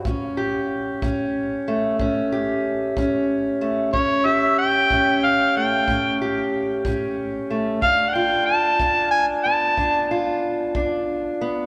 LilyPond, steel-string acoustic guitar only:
\new Staff \with { instrumentName = "Steel-string acoustic guitar" } { \time 12/8 \key a \dorian \tempo 4. = 62 << { cis'8 g'4 cis'4 a8 cis'8 g'4 cis'4 a8 | cis'8 g'4 cis'4 a8 cis'8 g'4 cis'4 a8 | d'8 f'4 d'4 b8 d'8 f'4 d'4 b8 | } \\ { a,4 r8 a,4 r8 a,4 r8 a,4 r8 | a,4 r8 a,4 r8 a,4 r8 a,4 r8 | g,4 r8 g,4 r8 g,4 r8 g,4 r8 | } >> }